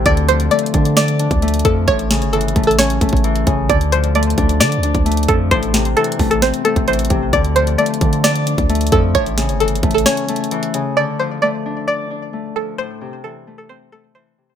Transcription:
Already playing: C3 A3 C4 D4
0.06 D2 D3 D5, kick, closed hi-hat
0.17 closed hi-hat
0.28 F3 C5, closed hi-hat
0.40 closed hi-hat
0.51 A3 D5, closed hi-hat
0.59 closed hi-hat
0.66 closed hi-hat
0.74 D3 D4, kick, closed hi-hat
0.85 closed hi-hat
0.97 D5, snare, closed hi-hat
1.08 closed hi-hat
1.19 D4, closed hi-hat
1.31 D2, kick, closed hi-hat
1.42 A3, closed hi-hat
1.48 closed hi-hat
1.54 closed hi-hat
1.59 closed hi-hat
1.65 F2 F3 A4, kick, closed hi-hat
1.88 A1 A2 C#5, kick, closed hi-hat
1.99 closed hi-hat
2.10 C#3, snare, closed hi-hat
2.22 G1, closed hi-hat
2.33 E3 A4, closed hi-hat
2.41 closed hi-hat
2.48 closed hi-hat
2.55 A1 A3, kick, closed hi-hat, open hi-hat
2.64 A4, closed hi-hat
2.71 closed hi-hat
2.78 C#4 C#5, snare, closed hi-hat
2.90 closed hi-hat
3.01 A1 A3, kick, closed hi-hat
3.09 kick, closed hi-hat
3.17 closed hi-hat
3.24 E3, closed hi-hat
3.36 closed hi-hat
3.47 A1 C#3, kick, closed hi-hat
3.69 D2 D3 D5, kick, closed hi-hat
3.81 closed hi-hat
3.92 F3 C5, closed hi-hat
4.04 closed hi-hat
4.15 A3 D5, closed hi-hat
4.23 closed hi-hat
4.30 closed hi-hat
4.38 D2 D4, kick, closed hi-hat
4.49 closed hi-hat
4.60 D3 D5, snare, closed hi-hat
4.72 closed hi-hat
4.77 D2
4.83 D4, closed hi-hat
4.95 D2, kick, closed hi-hat
5.05 A3, closed hi-hat
5.12 closed hi-hat
5.17 closed hi-hat
5.23 closed hi-hat
5.28 F2 F3 A4, kick, closed hi-hat
5.51 A1 A2 C5, kick, closed hi-hat
5.63 closed hi-hat
5.74 C3, snare, closed hi-hat
5.85 closed hi-hat
5.97 E3 A4, closed hi-hat
6.04 closed hi-hat
6.12 closed hi-hat
6.19 A1 A3, kick, open hi-hat
6.31 A4, closed hi-hat
6.42 C4 C5, snare, closed hi-hat
6.54 closed hi-hat
6.65 A3 A4, closed hi-hat
6.76 A1, kick, closed hi-hat
6.88 E3 C5, closed hi-hat
6.93 closed hi-hat
6.99 closed hi-hat
7.05 closed hi-hat
7.10 A1 C3, kick, closed hi-hat
7.33 D2 D3 D5, kick, closed hi-hat
7.45 closed hi-hat
7.56 F3 C5, closed hi-hat
7.67 closed hi-hat
7.78 A3 D5, closed hi-hat
7.86 closed hi-hat
7.94 closed hi-hat
8.01 D3 D4, kick, closed hi-hat
8.13 closed hi-hat
8.24 D5, snare, closed hi-hat
8.36 closed hi-hat
8.47 D4, closed hi-hat
8.58 D2, kick, closed hi-hat
8.69 A3, closed hi-hat
8.75 closed hi-hat
8.81 closed hi-hat
8.87 closed hi-hat
8.92 F2 F3 A4, kick, closed hi-hat
9.15 A1 A2 C#5, kick, closed hi-hat
9.26 closed hi-hat
9.38 C#3, snare, closed hi-hat
9.49 G1, closed hi-hat
9.60 E3 A4, closed hi-hat
9.68 closed hi-hat
9.76 closed hi-hat
9.83 A1 A3, kick, closed hi-hat, open hi-hat
9.91 A4, closed hi-hat
9.98 closed hi-hat
10.06 C#4 C#5, snare, closed hi-hat
10.17 closed hi-hat
10.29 A3, closed hi-hat
10.36 closed hi-hat
10.44 closed hi-hat
10.51 E3, closed hi-hat
10.63 closed hi-hat
10.74 C#3, closed hi-hat
10.97 D3 D5
11.19 F3 C5
11.42 A3 D5
11.66 D4
11.88 D5
12.10 D4
12.33 A3
12.55 F3 A4
12.78 A2 C5
13.01 C3
13.24 E3 A4
13.47 A3
13.58 A4
13.69 C4 C5
13.92 A3 A4
14.15 E3 C5
14.38 C3

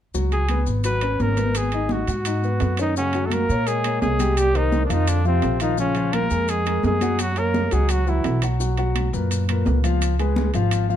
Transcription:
0.14 C#2 F#3 F#4, high conga, maracas
0.31 G#4, high conga, high timbale, maracas
0.49 B3 B4, high conga, high timbale, maracas
0.67 G#1, high conga, maracas
0.84 F#3 F#4 B4, high conga, high timbale, maracas
1.01 C#4 C#5, high conga, high timbale, maracas
1.20 G#1 A#4, high conga, maracas
1.37 B3 B4, high conga, high timbale, maracas
1.54 G#4, high conga, high timbale, maracas
1.72 D#4 D#5, high conga, high timbale, maracas
1.89 F#4, high conga, maracas
2.07 G#2 F#4 F#5, high conga, high timbale, maracas
2.24 D#4 D#5, high conga, high timbale, maracas
2.42 B3 B4, high conga, maracas
2.59 F#2, high conga, high timbale, low timbale, maracas
2.77 D#3 C#4 D#4 C#5, high conga, high timbale, maracas
2.95 C#3 F#3 C#4 F#4 F#5, high conga, maracas
3.13 F#3 F#4 F#5, high conga, high timbale, maracas
3.24 A3 A4
3.30 A#3 A#4, high conga, high timbale, maracas
3.48 A#2 A#3 A#4 C#5, high conga, maracas
3.67 G#3 G#4, high conga, high timbale, maracas
3.84 A#3 A#4 C#5, high conga, high timbale, maracas
4.02 C2 G#3 G#4, high conga, low timbale, maracas
4.19 G3 G4 G5, high conga, high timbale, maracas
4.37 G3 G4, high conga, high timbale, maracas
4.54 D#3 A#3 D#4 A#4 C5, high conga, high timbale, maracas
4.72 high conga, maracas
4.85 D3 D4
4.90 F2 D#3 F3 D#4 F4 F5, high conga, high timbale, maracas
5.07 D3 D4, high conga, high timbale, maracas
5.25 C3 F3 C4 F4 F5, high conga, maracas
5.42 A#1, high conga, high timbale, low timbale, maracas
5.60 D#3 F3 D#4 F4 F5, high conga, high timbale, maracas
5.77 C#3 F3 C#4 F4 F5, high conga, maracas
5.95 F3 F4 F5, high conga, high timbale, maracas
6.13 A#3 A#4, high conga, high timbale, maracas
6.30 F2 G#3 G#4 A#4, high conga, maracas
6.48 G#3 G#4, high conga, high timbale, maracas
6.66 G#3 G#4 A#4, high conga, high timbale, maracas
6.83 F#2 G#3 G#4, high conga, low timbale, maracas
7.01 F#3 F#4 F#5, high conga, high timbale, maracas
7.19 F#3 F#4, high conga, high timbale, maracas
7.36 A#3 A#4 C#5, high timbale, maracas
7.54 high conga, maracas
7.71 C#2 F#3 G#3 F#4 G#4 F#5, high conga, high timbale, maracas
7.89 F#3 F#4, high conga, high timbale, maracas
8.07 E3 F#3 E4 F#4 F#5, high conga, maracas
8.24 B1, high conga, high timbale, low timbale, maracas
8.42 F#3 F#4 F#5, high conga, high timbale, maracas
8.60 F#3 F#4 F#5, high conga, maracas
8.77 F#3 F#4 F#5, high conga, high timbale, maracas
8.95 high conga, high timbale, maracas
9.13 F#2 A#2 A#4 B4, high conga, maracas
9.30 high conga, high timbale, maracas
9.48 A#2 A#4 B4, high conga, high timbale, maracas
9.65 C#2, high conga, low timbale, maracas
9.83 F3 F4 F5, high conga, high timbale, maracas
10.02 high conga, high timbale, maracas
10.19 G#3 G#4 B4, high conga, high timbale, maracas
10.36 high conga, maracas
10.54 G#1 F3 F4 F5, high conga, high timbale, maracas
10.71 high conga, high timbale, maracas
10.89 F3 F4 F5, high conga, maracas

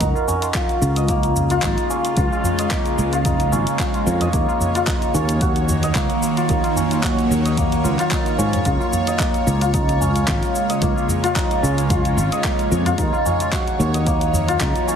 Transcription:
Already playing: A#3 F#4 A#4 D#5
0.01 C#2 C#3 D#4, kick, closed hi-hat, shaker
0.15 tabla na, shaker
0.21 G#3
0.28 C#4, tabla ge, shaker
0.42 F4, closed hi-hat, tabla na, tabla tin, shaker
0.54 F4, kick, clap, closed hi-hat, shaker
0.69 closed hi-hat, shaker
0.82 C#2, tabla na, shaker
0.96 D#5, closed hi-hat, shaker
1.08 A#3, kick, closed hi-hat, shaker
1.23 closed hi-hat, shaker
1.36 tabla ge, shaker
1.50 F4, closed hi-hat, tabla tin, shaker
1.62 G#1 D#4, kick, clap, closed hi-hat, shaker
1.78 closed hi-hat, shaker
1.90 C#4 C#5, tabla tin, shaker
2.05 closed hi-hat, shaker
2.17 C#2 F4, kick, closed hi-hat, shaker
2.33 tabla na, shaker
2.44 tabla ge, shaker
2.59 D#5, closed hi-hat, tabla na, tabla tin, shaker
2.71 A#3, kick, clap, closed hi-hat, shaker
2.86 closed hi-hat, shaker
2.98 C#2, shaker
3.13 F4, closed hi-hat, shaker
3.25 D#4, kick, closed hi-hat, tabla ge, shaker
3.40 closed hi-hat, shaker
3.52 G#1 C#4, tabla na, shaker
3.67 closed hi-hat, shaker
3.79 F4, kick, clap, closed hi-hat, shaker
3.94 closed hi-hat, tabla na, tabla tin, shaker
4.06 F2, shaker
4.21 D#5, closed hi-hat, tabla ge, shaker
4.33 D#2 D#3 A#3, kick, closed hi-hat, shaker
4.48 tabla na, shaker
4.60 tabla ge, shaker
4.68 A#3
4.75 F4, closed hi-hat, tabla na, tabla tin, shaker
4.85 F#3 D#4, kick, clap, closed hi-hat, shaker
5.02 closed hi-hat, shaker
5.14 D#2 C#4, tabla na, shaker
5.29 closed hi-hat, shaker
5.41 F#4, kick, closed hi-hat, shaker
5.56 closed hi-hat, shaker
5.69 tabla ge, shaker
5.83 D#5, closed hi-hat, tabla tin, shaker
5.95 C#2 A#3, kick, clap, closed hi-hat, shaker
6.10 closed hi-hat, shaker
6.23 tabla tin, shaker
6.37 F4, closed hi-hat, shaker
6.49 D#2 D#4, kick, closed hi-hat, shaker
6.64 closed hi-hat, tabla na, shaker
6.76 C#4, tabla ge, shaker
6.91 closed hi-hat, tabla na, tabla tin, shaker
7.03 F#4, kick, clap, closed hi-hat, shaker
7.19 closed hi-hat, shaker
7.30 D#2, shaker
7.45 D#5, closed hi-hat, shaker
7.57 A#3, kick, closed hi-hat, tabla ge, shaker
7.72 closed hi-hat, shaker
7.84 C#2, tabla na, shaker
7.99 F4, clap, closed hi-hat, shaker
8.11 D#4, kick, clap, closed hi-hat, shaker
8.26 closed hi-hat, tabla na, tabla tin, shaker
8.38 G#2 C#4, shaker
8.53 closed hi-hat, tabla ge, shaker
8.65 C#2 C#3 F4, kick, closed hi-hat, shaker
8.81 tabla na, shaker
8.93 G#3, tabla ge, shaker
9.07 D#5, closed hi-hat, tabla na, tabla tin, shaker
9.19 A#3, kick, clap, closed hi-hat, shaker
9.34 closed hi-hat, shaker
9.47 C#2, tabla na, shaker
9.61 F4, closed hi-hat, shaker
9.74 D#4, kick, closed hi-hat, shaker
9.89 closed hi-hat, shaker
10.00 C#4 F4, tabla ge, shaker
10.16 closed hi-hat, tabla tin, shaker
10.28 G#1 F4, kick, clap, closed hi-hat, shaker
10.43 closed hi-hat, shaker
10.55 tabla tin, shaker
10.70 D#5, closed hi-hat, shaker
10.82 C#2 A#3, kick, closed hi-hat, shaker
10.96 tabla na, shaker
11.08 tabla ge, shaker
11.24 F4, closed hi-hat, tabla na, tabla tin, shaker
11.36 D#4, kick, clap, closed hi-hat, shaker
11.51 closed hi-hat, shaker
11.63 C#2 C#4, shaker
11.78 closed hi-hat, shaker
11.90 F4, kick, closed hi-hat, tabla ge, shaker
12.05 closed hi-hat, shaker
12.17 G#1, tabla na, shaker
12.32 D#5, closed hi-hat, shaker
12.44 A#3, kick, clap, closed hi-hat, shaker
12.59 closed hi-hat, tabla na, tabla tin, shaker
12.71 F2, shaker
12.86 F4, closed hi-hat, tabla ge, shaker
12.98 D#2 D#3 D#4, kick, closed hi-hat, shaker
13.13 F#3, tabla na, shaker
13.25 C#4, tabla ge, shaker
13.32 A#3
13.40 closed hi-hat, tabla na, tabla tin, shaker
13.52 F#4, kick, clap, closed hi-hat, shaker
13.67 closed hi-hat, shaker
13.79 D#2, tabla na, shaker
13.94 D#5, closed hi-hat, shaker
14.06 A#3, kick, closed hi-hat, shaker
14.21 closed hi-hat, shaker
14.33 tabla ge, shaker
14.48 F4, closed hi-hat, tabla tin, shaker
14.61 C#2 D#4, kick, clap, closed hi-hat, shaker
14.76 closed hi-hat, shaker
14.87 C#4, tabla tin, shaker

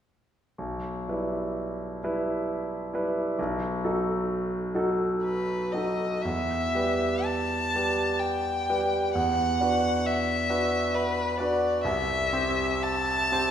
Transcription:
0.58 B1
1.08 G3 E4 B4
2.04 G3 E4 B4
2.94 G3 E4 B4
3.39 B1
3.85 F#3 D#4 A4
4.75 F#3 D#4 A4
5.24 B4
5.72 F#3 D#4 A4 D#5
6.21 E2 E5
6.75 G3 G4 B4
7.24 A5
7.75 G3 G4 B4
8.19 G5
8.70 G3 G4 B4
9.14 E2 F#5
9.60 D4 F#4 B4
10.06 E5
10.49 D4 F#4 B4
10.95 B4
11.38 D4 F#4 B4 D5
11.84 C2 E5
12.33 C4 G4 C5
12.83 A5
13.32 C4 G4 C5

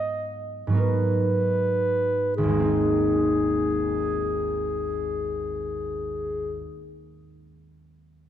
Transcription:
Already playing: G#2 F#3 B3 D#4 A#4 D#5
0.67 G#2 F#3
0.72 B3 D#4
0.77 A#4 B4
2.37 G#1 G#4
2.43 D#2
2.49 G#3
2.54 A#3
2.59 C4
2.65 D#4

